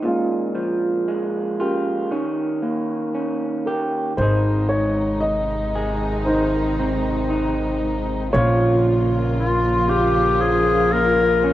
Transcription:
0.00 2.11 A#2 medium
0.00 0.54 D#3 medium
0.00 0.58 D#4 soft
0.04 2.08 G#3 medium
0.04 1.59 C#4 soft
0.04 1.56 F4 medium
0.55 2.04 F3 soft
1.08 2.11 G#3 medium
1.60 3.64 A#3 soft
1.60 3.64 C#4 soft
1.60 2.11 F4 medium
1.60 3.64 G4 medium
2.11 4.18 D#3 medium
2.11 3.13 C#4 medium
2.62 4.12 A#3 medium
3.14 4.12 C#4 medium
3.66 4.13 G4 medium
3.66 4.20 A#4 medium
4.17 8.29 G#1 medium
4.17 8.27 G#2 medium
4.17 8.30 C3 medium
4.17 8.30 D#3 medium
4.17 6.25 D#3 medium
4.17 8.29 G#3 medium
4.17 8.29 D#4 medium
4.17 6.23 D#4 medium
4.17 7.29 D#4 medium
4.17 4.66 C5 medium
4.22 5.74 G#4 medium
4.69 5.23 C#5 medium
5.20 6.21 D#5 medium
5.75 8.28 G#4 medium
6.25 8.33 D#3 medium
6.25 8.31 D#4 medium
6.25 7.77 C5 medium
6.79 8.28 C4 medium
7.30 8.27 D#4 medium
8.33 11.53 A#1 medium
8.33 11.53 A#2 medium
8.33 11.53 C#3 medium
8.33 11.53 F3 medium
8.33 10.39 F3 medium
8.33 11.53 A#3 medium
8.33 10.91 A#3 medium
8.33 11.43 C#4 medium
8.33 11.53 F4 medium
8.33 9.88 F4 medium
8.33 10.38 F4 medium
8.33 9.33 C#5 medium
9.38 9.90 F4 medium
9.89 11.53 F4 medium
9.89 10.43 G4 medium
10.40 11.53 F3 medium
10.40 10.94 G#4 loud
10.92 11.53 A#3 medium
10.92 11.53 A#4 medium
11.44 11.53 C#4 medium

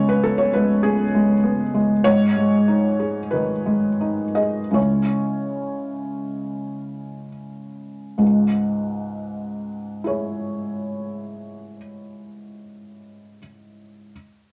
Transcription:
0.00 0.81 C#3 medium
0.00 0.42 G#3 soft
0.00 0.25 B3 soft
0.00 0.38 C#5 medium
0.09 0.24 B4 medium
0.23 0.72 B3 soft
0.23 0.39 A4 medium
0.38 0.53 C#5 medium
0.53 1.02 G#3 soft
0.53 0.83 B4 medium
0.83 1.32 B3 soft
0.83 1.74 G#4 medium
1.15 1.63 G#3 soft
1.44 1.93 B3 soft
1.74 2.05 G#3 soft
2.04 3.28 G#2 medium
2.04 3.32 C#5 loud
2.37 2.87 G#3 soft
2.68 3.19 D#4 soft
3.00 3.52 G#4 soft
3.31 3.87 D#3 soft
3.31 4.37 B4 medium
3.66 4.23 G#3 soft
4.01 4.60 D#4 soft
4.35 4.75 G#4 soft
4.35 4.74 D#5 medium
4.71 8.14 C#3 soft
4.71 8.14 G#3 soft
4.71 8.15 C#4 soft
4.71 8.15 E4 soft
4.71 7.27 C#5 medium
8.18 11.76 C#2 soft
8.18 11.75 G#2 soft
10.04 13.36 E4 soft
10.04 13.37 G#4 soft
10.04 13.38 C#5 soft

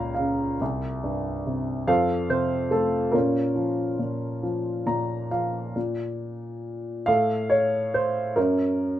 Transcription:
0.00 0.56 C#2 medium
0.00 0.58 A#2 soft
0.00 0.56 C#5 medium
0.00 0.15 F5 medium
0.00 0.62 A#5 medium
0.15 0.60 C#3 soft
0.15 0.56 F5 medium
0.61 1.84 C2 medium
1.04 1.85 G2 soft
1.46 1.87 C3 soft
1.87 3.10 F2 medium
1.87 2.70 A4 medium
1.87 2.29 C5 medium
1.87 2.31 F5 medium
2.29 3.11 C3 soft
2.29 2.73 C5 medium
2.71 3.12 A3 soft
2.71 3.15 A4 medium
3.12 3.97 A#2 medium
3.12 4.83 C#4 medium
3.12 4.83 F4 medium
3.12 4.82 A#4 medium
3.55 4.42 F3 soft
3.99 4.85 A#2 soft
4.43 5.30 F3 soft
4.86 5.72 A#2 medium
4.86 5.28 A#5 medium
5.31 5.74 F3 soft
5.31 5.72 F5 medium
5.76 7.04 A#2 soft
7.06 8.33 A2 medium
7.06 8.33 A4 medium
7.06 7.52 F5 medium
7.50 7.95 C#5 medium
7.94 8.38 C5 medium
8.36 9.00 F#2 soft
8.36 9.00 C#4 soft
8.36 9.00 A#4 medium

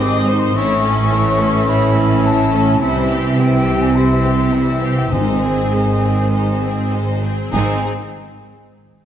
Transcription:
0.00 0.52 G#1 medium
0.00 0.52 G#2 medium
0.00 0.52 C3 medium
0.00 0.53 D#3 medium
0.00 0.52 G#3 medium
0.00 0.28 C4 medium
0.00 0.52 C4 medium
0.00 0.52 D#4 medium
0.00 0.28 G#4 soft
0.00 0.27 D#5 medium
0.00 0.52 D#5 medium
0.00 0.20 D6 medium
0.19 0.40 D#6 medium
0.28 0.56 D#4 soft
0.28 0.56 C5 soft
0.38 0.55 C6 medium
0.55 2.77 A1 medium
0.55 2.77 A2 medium
0.55 5.07 E3 medium
0.55 0.82 A3 medium
0.55 2.78 A3 medium
0.55 2.77 C#4 medium
0.55 2.82 C#4 medium
0.55 0.82 E4 medium
0.55 0.82 C#5 medium
0.55 2.77 E5 medium
0.55 1.70 C#6 loud
0.84 1.12 C#4 medium
0.84 1.12 A4 medium
1.12 1.41 A3 medium
1.12 1.40 E4 medium
1.12 1.40 C#5 soft
1.39 1.68 C#4 medium
1.39 1.69 C#4 soft
1.39 1.68 A4 medium
1.67 1.95 A3 soft
1.67 1.95 E4 soft
1.67 1.94 C#5 medium
1.67 2.27 B5 medium
1.96 2.25 C#4 soft
1.96 2.25 A4 soft
2.24 2.53 A3 medium
2.24 2.52 E4 soft
2.24 2.53 C#5 medium
2.24 2.80 A5 medium
2.52 2.81 C#4 soft
2.52 2.81 A4 soft
2.80 5.11 C2 medium
2.80 5.12 C3 medium
2.80 5.08 C3 medium
2.80 4.95 G3 medium
2.80 3.07 G3 medium
2.80 3.34 C4 medium
2.80 7.19 C4 medium
2.80 3.07 E4 medium
2.80 3.07 C5 medium
2.80 3.40 E5 medium
2.80 3.34 E5 soft
3.09 3.37 C4 soft
3.09 3.38 G4 soft
3.38 3.66 G3 soft
3.38 3.93 C4 medium
3.38 3.66 E4 soft
3.38 3.66 C5 soft
3.38 3.94 E5 medium
3.38 3.83 G5 medium
3.66 3.94 C4 soft
3.66 3.94 G4 soft
3.66 3.95 G4 soft
3.82 3.97 G#5 medium
3.94 4.21 G3 soft
3.94 4.51 C4 soft
3.94 4.21 E4 soft
3.94 4.21 C5 soft
3.94 4.52 E5 soft
3.94 4.55 C6 medium
4.23 4.52 C4 soft
4.23 4.52 G4 soft
4.52 4.81 G3 soft
4.52 5.10 C4 soft
4.52 4.81 E4 soft
4.52 4.81 C5 soft
4.52 4.81 E5 medium
4.52 5.14 E5 soft
4.82 5.11 C4 soft
4.82 5.11 G4 soft
4.82 4.99 F5 medium
4.98 5.10 G5 medium
5.10 7.28 G#1 medium
5.10 7.23 G#2 soft
5.10 5.98 G#2 medium
5.10 7.28 G#2 soft
5.10 7.19 D#3 soft
5.10 5.39 G#3 soft
5.10 7.19 G#3 soft
5.10 7.19 C4 soft
5.10 5.39 D#4 soft
5.10 5.39 C5 soft
5.10 7.23 D#5 soft
5.10 7.19 G#5 medium
5.40 5.72 C4 soft
5.40 5.71 G#4 soft
5.71 6.02 G#3 soft
5.71 6.02 D#4 soft
5.71 6.02 C5 soft
6.01 6.32 C4 soft
6.01 6.32 G#4 soft
6.30 6.60 G#3 soft
6.30 6.59 D#4 soft
6.30 6.60 C5 soft
6.60 6.91 C4 soft
6.60 6.93 C4 soft
6.60 6.93 G#4 soft
6.91 7.23 G#3 soft
6.91 7.22 D#4 soft
6.91 7.23 C5 soft
7.22 7.53 C4 soft
7.22 7.51 G#4 soft
7.52 7.86 G#1 medium
7.52 7.87 G#2 medium
7.52 7.81 G#2 soft
7.52 7.79 G#2 medium
7.52 7.79 D#3 medium
7.52 7.79 G#3 soft
7.52 7.78 C4 soft
7.52 7.79 C4 medium
7.52 7.87 C4 medium
7.52 7.86 D#4 medium
7.52 7.86 G#4 medium
7.52 7.79 D#5 soft
7.52 7.86 G#5 medium

